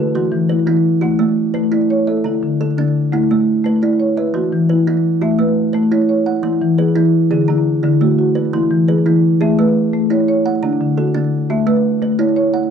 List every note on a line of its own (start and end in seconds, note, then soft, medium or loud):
0.00 0.15 G#4 medium
0.00 0.33 A4 medium
0.00 0.50 B4 medium
0.15 0.50 E3 medium
0.15 0.67 F#4 medium
0.32 0.65 E3 medium
0.49 1.02 E4 medium
0.49 1.02 B4 medium
0.66 1.02 E3 medium
0.66 1.02 E4 medium
1.01 1.37 A3 medium
1.01 1.37 F#4 medium
1.01 1.55 F#5 medium
1.19 1.54 A3 medium
1.54 1.90 A3 medium
1.54 2.07 B4 medium
1.72 2.07 E4 medium
1.72 2.25 D5 medium
1.90 2.08 C#5 medium
2.07 2.60 A4 medium
2.07 2.42 E5 medium
2.24 2.60 D3 medium
2.24 2.78 E4 medium
2.43 2.77 D3 medium
2.61 3.13 A4 medium
2.78 3.13 D3 medium
2.78 3.13 D4 medium
3.12 3.47 A3 medium
3.12 3.48 E4 medium
3.12 3.65 F#5 medium
3.31 3.65 A3 medium
3.64 4.00 A3 medium
3.64 4.18 B4 medium
3.82 4.18 E4 medium
3.82 4.35 D5 medium
4.00 4.17 C#5 medium
4.17 4.70 B4 medium
4.17 4.52 E5 medium
4.34 4.69 E3 medium
4.34 4.87 F#4 medium
4.52 4.86 E3 medium
4.69 5.22 E4 medium
4.69 5.22 B4 medium
4.87 5.22 E3 medium
4.87 5.40 E4 medium
5.21 5.57 A3 medium
5.21 5.57 F#4 medium
5.21 5.75 E5 medium
5.39 5.74 A3 medium
5.39 5.92 B4 medium
5.73 6.09 A3 medium
5.73 6.26 B4 medium
5.92 6.27 E4 medium
5.92 6.08 C#5 medium
6.09 6.27 C#5 medium
6.26 6.61 F#5 medium
6.43 6.79 E3 medium
6.43 6.96 E4 medium
6.62 6.95 E3 medium
6.78 7.31 G#4 medium
6.78 7.31 B4 medium
6.96 7.31 E3 medium
6.96 7.31 E4 medium
7.31 7.66 D3 medium
7.31 7.66 G#4 medium
7.48 7.83 D3 medium
7.48 8.02 E4 medium
7.83 8.19 D3 medium
7.83 8.36 E4 medium
8.01 8.36 A3 medium
8.01 8.17 F#4 medium
8.19 8.36 F#4 medium
8.35 8.70 B4 medium
8.53 8.88 E3 medium
8.53 9.06 E4 medium
8.71 9.05 E3 medium
8.88 9.40 G#4 medium
8.88 9.41 B4 medium
9.06 9.41 E3 medium
9.06 9.41 E4 medium
9.41 9.76 A3 medium
9.41 9.75 G#4 medium
9.41 9.93 E5 medium
9.59 9.93 A3 medium
9.59 10.10 B4 medium
9.93 10.28 A3 medium
10.10 10.45 E4 medium
10.10 10.27 C#5 medium
10.28 10.45 C#5 medium
10.46 10.80 F#5 medium
10.63 10.97 D3 medium
10.63 11.15 D4 medium
10.81 11.14 D3 medium
10.97 11.50 F#4 medium
10.97 11.49 A4 medium
11.14 11.50 D3 medium
11.14 11.49 D4 medium
11.50 11.84 A3 medium
11.50 11.84 F#4 medium
11.50 12.02 E5 medium
11.67 12.02 A3 medium
11.67 12.19 B4 medium
12.02 12.36 A3 medium
12.02 12.54 B4 medium
12.19 12.54 E4 medium
12.19 12.35 C#5 medium
12.36 12.54 C#5 medium
12.54 12.71 F#5 medium